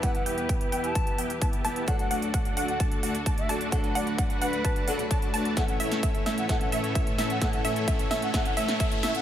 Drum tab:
HH |xxoxxxoxxxoxxxox|xxoxxxoxxxoxxxox|xxoxxxoxxxoxxxox|xxoxxxoxxxoxxxox|
SD |----------------|----------------|----------------|o--o--o-o-----o-|
BD |o---o---o---o---|o---o---o---o---|o---o---o---o---|o---o---o---o---|

HH |xxoxxxoxxxoxxxox|
SD |o-----o-o--o--o-|
BD |o---o---o---o---|